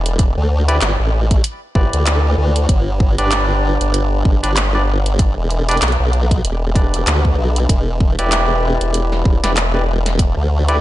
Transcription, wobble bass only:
0.00 0.35 E1 loud
0.37 0.80 D2 loud
0.82 0.97 G1 loud
1.00 1.42 A1 medium
1.75 1.91 G1 medium
1.93 2.36 D2 loud
2.38 2.67 D2 medium
2.69 3.16 G1 medium
3.18 3.78 G1 loud
3.81 4.23 G1 loud
4.25 4.41 G1 medium
4.43 5.34 G1 loud
5.37 5.80 E1 medium
5.82 5.97 B1 medium
6.00 6.42 B1 loud
6.45 7.05 E1 medium
7.07 7.36 D2 medium
7.38 7.67 B1 medium
7.69 8.16 E1 loud
8.18 8.78 E1 loud
8.81 9.23 E1 loud
9.26 9.41 E1 medium
9.44 10.34 E1 loud
10.37 10.79 D2 medium

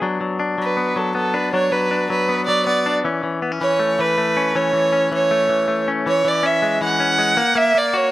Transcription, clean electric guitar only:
0.00 0.20 F#3 medium
0.00 0.77 B3 medium
0.00 0.38 D4 medium
0.21 0.57 F#3 medium
0.40 1.33 D4 medium
0.58 0.95 F#3 medium
0.77 1.14 B3 medium
0.96 1.52 F#3 medium
1.15 2.28 B3 medium
1.34 1.53 D4 medium
1.53 1.71 F#3 medium
1.53 1.90 D4 medium
1.72 2.09 F#3 medium
1.91 2.85 D4 medium
2.10 2.47 F#3 medium
2.29 2.66 B3 medium
2.48 3.04 F#3 medium
2.67 3.08 B3 medium
2.86 3.05 D4 medium
3.04 3.23 E3 medium
3.04 3.42 C#4 medium
3.23 3.61 E3 medium
3.42 3.52 B3 medium
3.52 4.36 C#4 medium
3.61 3.99 E3 medium
3.80 4.16 A3 medium
3.99 4.55 E3 medium
4.18 5.30 A3 medium
4.37 4.55 C#4 medium
4.55 4.73 E3 medium
4.55 4.92 C#4 medium
4.73 5.11 E3 medium
4.92 5.87 C#4 medium
5.12 5.48 E3 medium
5.31 5.67 A3 medium
5.49 6.05 E3 medium
5.68 6.10 A3 medium
5.88 6.43 C#4 medium
6.06 6.24 E3 medium
6.25 6.80 E3 medium
6.43 6.99 C#4 medium
6.62 7.17 G#3 medium
6.81 7.42 E3 medium
7.00 7.42 C#4 medium
7.18 7.37 G#3 medium
7.37 7.54 A#3 medium
7.55 7.74 A#3 medium
7.75 8.12 A#3 medium
7.94 8.12 F#4 medium

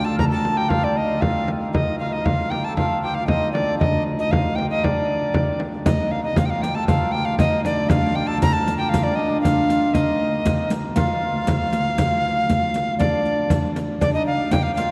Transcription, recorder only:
0.05 0.18 A5 loud
0.19 0.25 A#5 loud
0.31 0.59 A5 medium
0.57 0.71 G5 loud
0.69 0.85 F5 medium
0.84 0.98 D5 medium
0.97 1.23 D#5 medium
1.21 1.50 F5 loud
1.73 1.98 D#5 medium
1.99 2.14 F5 medium
2.13 2.27 D#5 medium
2.25 2.52 F5 medium
2.50 2.66 G5 medium
2.64 2.76 A5 medium
2.77 3.01 F5 medium
3.03 3.16 G5 medium
3.14 3.26 F5 medium
3.27 3.52 D#5 medium
3.53 3.77 D5 medium
3.79 4.03 D#5 medium
4.19 4.33 D#5 medium
4.31 4.57 F5 medium
4.55 4.69 G5 medium
4.70 4.85 D#5 medium
4.84 5.60 D5 medium
5.86 6.13 D#5 medium
6.11 6.23 F5 medium
6.24 6.39 D#5 medium
6.38 6.47 F5 medium
6.45 6.51 G5 medium
6.50 6.63 F5 medium
6.62 6.76 G5 medium
6.75 6.87 A5 medium
6.88 7.13 F5 medium
7.12 7.27 G5 loud
7.25 7.38 F5 loud
7.39 7.63 D#5 loud
7.65 7.91 D5 medium
7.89 8.17 F5 loud
8.15 8.29 G5 loud
8.27 8.41 A5 loud
8.42 8.54 A#5 loud
8.53 8.77 A5 loud
8.78 8.91 G5 medium
8.89 9.05 F5 loud
9.03 9.17 D5 medium
9.15 9.40 D#5 medium
9.41 9.96 F5 loud
9.94 10.71 D#5 medium
10.95 12.95 F5 loud
12.99 13.71 D5 medium
14.01 14.12 D5 medium
14.14 14.25 D#5 medium
14.26 14.53 F5 loud
14.52 14.64 G5 loud
14.63 14.74 F5 loud
14.75 14.91 F5 medium

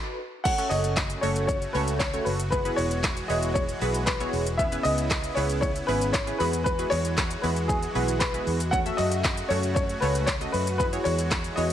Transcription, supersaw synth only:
0.45 2.50 C#3 medium
0.45 2.50 A3 medium
0.45 4.55 F#4 medium
2.52 4.57 E3 medium
2.52 4.57 G#3 medium
4.59 6.38 C#3 medium
4.59 6.38 B3 medium
4.59 6.38 E4 medium
6.40 8.70 E3 medium
6.40 8.70 G#3 medium
6.40 11.73 F#4 medium
8.73 10.78 C#3 medium
8.73 10.78 A3 medium
10.80 11.73 E3 medium
10.80 11.73 G#3 medium

